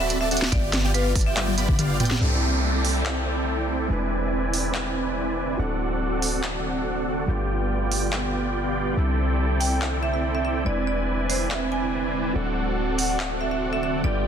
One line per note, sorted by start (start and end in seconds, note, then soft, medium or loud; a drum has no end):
0.00 0.50 D1 medium
0.00 0.18 C4 loud
0.00 0.18 F#4 medium
0.00 0.18 A4 medium
0.00 0.18 D5 medium
0.00 0.18 B5 loud
0.10 closed hi-hat medium
0.21 0.29 C4 medium
0.21 0.29 F#4 medium
0.21 0.29 A4 medium
0.21 0.29 D5 medium
0.21 0.27 E5 loud
0.21 0.29 A5 medium
0.31 0.50 C4 loud
0.31 0.50 F#4 medium
0.31 0.50 A4 medium
0.31 0.50 D5 medium
0.31 0.38 E5 medium
0.31 0.50 F#5 loud
0.31 closed hi-hat medium
0.37 closed hi-hat medium
0.42 snare medium
0.52 2.19 G1 loud
0.52 0.71 B3 loud
0.52 0.71 G4 medium
0.52 0.70 D5 medium
0.52 0.71 D5 medium
0.52 0.71 G5 loud
0.52 kick loud
0.52 closed hi-hat medium
0.73 0.82 B3 medium
0.73 0.82 F4 medium
0.73 0.82 G4 medium
0.73 0.82 D5 medium
0.73 0.82 A5 medium
0.73 snare medium
0.73 closed hi-hat medium
0.84 0.92 B3 medium
0.84 0.92 F4 medium
0.84 0.92 G4 medium
0.84 0.92 D5 medium
0.84 0.92 G5 loud
0.94 1.12 B3 loud
0.94 1.12 F4 medium
0.94 1.12 G4 medium
0.94 1.12 B4 medium
0.94 1.12 D5 medium
0.94 1.12 F5 loud
0.94 closed hi-hat medium
1.15 1.24 B3 medium
1.15 1.24 G4 medium
1.15 1.24 A5 medium
1.15 kick loud
1.15 open hi-hat loud
1.21 closed hi-hat medium
1.26 1.35 B3 medium
1.26 1.35 F4 medium
1.26 1.35 G4 medium
1.26 1.35 D5 medium
1.26 1.33 E5 medium
1.26 1.35 G5 medium
1.37 1.55 B3 medium
1.37 1.55 F4 medium
1.37 1.55 G4 medium
1.37 1.55 D5 medium
1.37 1.44 E5 medium
1.37 1.55 G5 medium
1.37 clap loud
1.37 closed hi-hat medium
1.37 high tom medium
1.47 high tom medium
1.58 1.76 B3 medium
1.58 1.76 F4 medium
1.58 1.76 G4 medium
1.58 1.76 D5 medium
1.58 1.76 B5 loud
1.58 closed hi-hat medium
1.69 kick medium
1.69 mid tom medium
1.79 1.97 B3 medium
1.79 1.98 F4 medium
1.79 1.97 G4 medium
1.79 1.97 D5 medium
1.79 1.97 F5 loud
1.79 closed hi-hat medium
1.79 mid tom medium
2.00 2.19 B3 loud
2.00 2.19 F4 medium
2.00 2.19 G4 medium
2.00 2.19 D5 medium
2.00 2.19 G5 loud
2.00 closed hi-hat medium
2.00 mid tom loud
2.05 closed hi-hat medium
2.11 snare medium
2.11 mid tom medium
2.19 3.88 C2 medium
2.19 12.31 D3 medium
2.19 3.87 G3 medium
2.19 3.89 A3 medium
2.19 3.87 C4 medium
2.19 3.88 C4 medium
2.19 7.24 C4 medium
2.19 3.88 D4 medium
2.19 3.88 E4 medium
2.19 5.56 E4 medium
2.19 3.88 E4 medium
2.19 3.88 A4 medium
2.19 3.89 A4 medium
2.19 3.88 D5 medium
2.19 3.88 G5 medium
2.19 downlifter medium
2.85 open hi-hat medium
3.06 finger snap medium
3.06 clap loud
3.88 5.57 E1 medium
3.88 5.56 G#3 medium
3.88 5.58 G#3 medium
3.88 5.56 C4 medium
3.88 5.57 C4 medium
3.88 5.57 D4 medium
3.88 5.57 E4 medium
3.88 5.57 B4 medium
3.88 5.57 D5 medium
3.88 5.57 G#5 medium
3.92 5.58 B4 medium
4.54 open hi-hat medium
4.75 finger snap medium
4.75 clap loud
5.57 7.26 D1 medium
5.57 7.25 F#3 medium
5.57 7.26 A3 medium
5.57 7.25 C4 medium
5.57 7.26 C4 medium
5.57 7.26 D4 medium
5.57 7.26 E4 medium
5.57 7.26 F#4 medium
5.57 7.27 F#4 medium
5.57 7.26 A4 medium
5.57 7.27 A4 medium
5.57 7.26 D5 medium
5.57 7.26 F#5 medium
6.22 open hi-hat medium
6.44 finger snap medium
6.44 clap loud
7.26 8.95 G1 medium
7.26 8.94 G3 medium
7.26 8.95 G3 medium
7.26 8.94 B3 medium
7.26 8.95 B3 medium
7.26 8.96 B3 medium
7.26 8.95 D4 medium
7.26 8.95 F4 medium
7.26 8.96 F4 medium
7.26 8.95 F4 medium
7.26 8.95 G4 medium
7.26 8.95 D5 medium
7.26 8.95 G5 medium
7.30 8.96 A4 medium
7.92 open hi-hat medium
8.13 finger snap medium
8.13 clap loud
8.95 10.64 C2 medium
8.95 10.63 G3 medium
8.95 10.65 A3 medium
8.95 10.63 C4 medium
8.95 10.64 C4 medium
8.95 10.65 C4 medium
8.95 10.64 D4 medium
8.95 10.64 E4 medium
8.95 10.65 E4 medium
8.95 10.64 E4 medium
8.95 10.64 A4 medium
8.95 10.64 D5 medium
8.95 10.64 G5 medium
8.99 10.65 A4 medium
9.60 9.67 G5 medium
9.60 open hi-hat medium
9.71 9.78 G5 medium
9.82 finger snap medium
9.82 clap loud
10.03 10.10 E5 medium
10.14 10.20 E5 medium
10.35 10.41 E5 medium
10.45 10.52 E5 medium
10.64 12.33 E1 medium
10.64 12.32 G#3 medium
10.64 12.34 G#3 medium
10.64 12.32 C4 medium
10.64 12.33 C4 medium
10.64 12.34 C4 medium
10.64 12.33 D4 medium
10.64 12.33 E4 medium
10.64 12.34 E4 medium
10.64 12.33 E4 medium
10.64 12.33 B4 medium
10.64 12.34 B4 medium
10.64 12.33 D5 medium
10.64 10.84 D5 medium
10.64 12.33 G#5 medium
10.87 11.05 D5 medium
11.30 11.49 C5 medium
11.30 open hi-hat medium
11.51 11.70 E5 medium
11.51 finger snap medium
11.51 clap loud
11.72 12.04 G#5 medium
12.33 14.02 D1 medium
12.33 14.27 D3 medium
12.33 14.01 F#3 medium
12.33 14.03 A3 medium
12.33 14.01 C4 medium
12.33 14.02 C4 medium
12.33 14.03 C4 medium
12.33 14.02 D4 medium
12.33 14.02 E4 medium
12.33 14.02 F#4 medium
12.33 14.03 F#4 medium
12.33 14.02 A4 medium
12.33 14.03 A4 medium
12.33 14.02 D5 medium
12.33 14.02 F#5 medium
12.98 13.05 F#5 medium
12.98 open hi-hat medium
13.09 13.16 F#5 medium
13.20 finger snap medium
13.20 clap loud
13.41 13.48 E5 medium
13.51 13.58 E5 medium
13.73 13.79 E5 medium
13.83 13.90 E5 medium
14.02 14.27 G1 medium
14.02 14.27 G3 medium
14.02 14.27 B3 medium
14.02 14.27 D4 medium
14.02 14.27 F4 medium
14.02 14.27 G4 medium
14.02 14.22 D5 medium
14.02 14.27 D5 medium
14.02 14.27 G5 medium
14.06 14.27 A4 medium